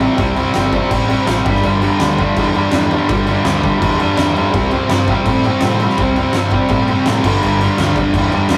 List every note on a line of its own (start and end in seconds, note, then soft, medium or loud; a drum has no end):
0.00 0.16 C3 medium
0.00 0.18 G3 medium
0.00 0.18 C4 medium
0.00 1.42 G4 medium
0.00 1.43 C5 medium
0.00 1.43 E5 medium
0.00 crash medium
0.17 0.42 C2 loud
0.17 0.35 C3 loud
0.17 0.36 G3 loud
0.17 0.37 C4 loud
0.17 kick loud
0.17 crash medium
0.36 0.54 C3 medium
0.36 0.55 G3 loud
0.36 0.55 C4 loud
0.36 crash medium
0.54 0.79 G1 loud
0.54 0.72 C3 medium
0.54 0.73 G3 medium
0.54 0.73 C4 loud
0.54 snare loud
0.54 crash medium
0.72 0.90 C3 medium
0.72 0.91 G3 medium
0.72 0.90 C4 medium
0.72 kick medium
0.72 crash medium
0.90 1.14 A1 medium
0.90 1.07 C3 medium
0.90 1.09 G3 loud
0.90 1.09 C4 loud
0.90 kick medium
0.90 crash loud
1.08 1.25 C3 medium
1.08 1.27 G3 medium
1.08 1.26 C4 medium
1.08 1.26 F#5 medium
1.08 crash medium
1.26 1.39 A1 loud
1.26 1.44 C3 medium
1.26 1.46 G3 loud
1.26 1.45 C4 loud
1.26 1.45 G5 medium
1.26 snare loud
1.26 crash loud
1.45 1.58 G1 medium
1.45 1.64 G2 medium
1.45 1.63 D3 loud
1.45 1.65 G3 loud
1.45 4.32 G4 medium
1.45 4.32 B4 medium
1.45 4.32 D5 medium
1.45 1.63 B5 medium
1.45 kick loud
1.45 crash medium
1.55 snare soft
1.63 1.87 G1 loud
1.63 1.81 G2 medium
1.63 1.82 D3 loud
1.63 1.83 G3 loud
1.63 crash medium
1.82 2.00 G2 medium
1.82 2.00 D3 loud
1.82 2.02 G3 loud
1.82 crash medium
2.00 2.24 D2 loud
2.00 2.19 G2 medium
2.00 2.18 D3 loud
2.00 2.20 G3 loud
2.00 snare loud
2.00 crash medium
2.18 2.36 G2 medium
2.18 2.37 D3 medium
2.18 2.38 G3 loud
2.18 kick medium
2.18 crash medium
2.36 2.60 E2 medium
2.36 2.54 G2 loud
2.36 2.55 D3 loud
2.36 2.57 G3 loud
2.36 kick medium
2.36 crash medium
2.54 2.71 G2 medium
2.54 2.72 D3 loud
2.54 2.74 G3 medium
2.54 crash medium
2.72 2.96 E2 loud
2.72 2.90 G2 medium
2.72 2.91 D3 loud
2.72 2.92 G3 loud
2.72 snare loud
2.72 crash medium
2.91 3.07 G2 medium
2.91 3.09 D3 medium
2.91 3.10 G3 medium
2.91 crash medium
3.08 3.33 G1 loud
3.08 3.25 G2 medium
3.08 3.27 D3 loud
3.08 3.28 G3 loud
3.08 kick loud
3.08 crash medium
3.26 3.42 G2 medium
3.26 3.43 D3 medium
3.26 3.45 G3 medium
3.26 crash medium
3.43 3.68 D2 loud
3.43 3.60 G2 medium
3.43 3.61 D3 medium
3.43 3.63 G3 loud
3.43 snare loud
3.43 crash medium
3.62 3.78 G2 medium
3.62 3.80 D3 medium
3.62 3.81 G3 medium
3.62 kick medium
3.62 crash medium
3.79 4.05 E2 loud
3.79 3.97 G2 loud
3.79 3.98 D3 medium
3.79 4.00 G3 loud
3.79 kick loud
3.79 crash medium
3.98 4.15 G2 medium
3.98 4.16 D3 medium
3.98 4.17 G3 medium
3.98 crash medium
4.16 4.41 E2 medium
4.16 4.34 G2 medium
4.16 4.35 D3 medium
4.16 4.37 G3 loud
4.16 snare loud
4.16 crash medium
4.35 4.51 G2 medium
4.35 4.53 D3 medium
4.35 4.53 G3 medium
4.35 crash medium
4.51 4.77 C2 loud
4.51 4.70 C3 medium
4.51 4.72 G3 loud
4.51 4.73 C4 loud
4.51 7.18 G4 medium
4.51 7.19 C5 medium
4.51 7.20 E5 medium
4.51 kick loud
4.51 crash medium
4.71 4.87 C3 medium
4.71 4.89 G3 medium
4.71 4.89 C4 medium
4.71 crash medium
4.88 5.13 G2 medium
4.88 5.08 C3 medium
4.88 5.09 G3 loud
4.88 5.09 C4 loud
4.88 snare loud
4.88 crash medium
5.08 5.25 C3 medium
5.08 5.26 G3 medium
5.08 5.27 C4 loud
5.08 kick medium
5.08 crash medium
5.25 5.49 A2 medium
5.25 5.44 C3 medium
5.25 5.45 G3 loud
5.25 5.45 C4 loud
5.25 kick medium
5.25 crash medium
5.44 5.61 C3 medium
5.44 5.63 G3 medium
5.44 5.63 C4 loud
5.44 crash medium
5.61 5.86 A2 medium
5.61 5.78 C3 medium
5.61 5.80 G3 medium
5.61 5.80 C4 loud
5.61 snare loud
5.61 crash medium
5.79 5.97 C3 medium
5.79 5.99 G3 loud
5.79 5.99 C4 medium
5.79 crash medium
5.90 snare soft
5.98 6.21 C2 loud
5.98 6.16 C3 medium
5.98 6.17 G3 loud
5.98 6.17 C4 loud
5.98 kick loud
5.98 crash medium
6.16 6.33 C3 medium
6.16 6.35 G3 medium
6.16 6.36 C4 loud
6.16 crash medium
6.33 6.57 G2 loud
6.33 6.51 C3 medium
6.33 6.52 G3 loud
6.33 6.53 C4 loud
6.33 snare loud
6.33 crash medium
6.50 6.68 C3 medium
6.50 6.69 G3 medium
6.50 6.70 C4 medium
6.50 kick medium
6.50 crash medium
6.68 6.93 A2 medium
6.68 6.87 C3 medium
6.68 6.88 G3 loud
6.68 6.88 C4 loud
6.68 kick loud
6.68 crash medium
6.88 7.05 C3 medium
6.88 7.06 G3 medium
6.88 7.06 C4 medium
6.88 crash medium
7.06 7.18 A2 medium
7.06 7.23 C3 loud
7.06 7.23 G3 loud
7.06 7.24 C4 loud
7.06 snare loud
7.06 crash medium
7.24 7.35 G1 loud
7.24 7.40 G2 loud
7.24 7.41 D3 loud
7.24 7.42 G3 loud
7.24 8.58 G4 medium
7.24 8.58 B4 medium
7.24 8.58 D5 medium
7.24 kick loud
7.24 crash loud
7.41 7.66 G1 loud
7.41 7.59 G2 loud
7.41 7.60 D3 loud
7.41 7.61 G3 loud
7.41 crash medium
7.60 7.77 G2 medium
7.60 7.79 D3 loud
7.60 7.79 G3 medium
7.60 crash medium
7.78 8.01 D2 medium
7.78 7.95 G2 medium
7.78 7.96 D3 medium
7.78 7.96 G3 loud
7.78 snare loud
7.78 crash medium
7.96 8.15 G2 medium
7.96 8.15 D3 medium
7.96 8.16 G3 medium
7.96 kick medium
7.96 crash medium
8.13 8.37 E2 loud
8.13 8.31 G2 medium
8.13 8.32 D3 loud
8.13 8.33 G3 loud
8.13 kick loud
8.13 crash loud
8.32 8.49 G2 medium
8.32 8.50 D3 medium
8.32 8.51 G3 medium
8.32 crash medium
8.49 8.58 E2 medium
8.49 8.58 G2 loud
8.49 8.58 D3 medium
8.49 8.58 G3 loud
8.49 snare loud
8.49 crash medium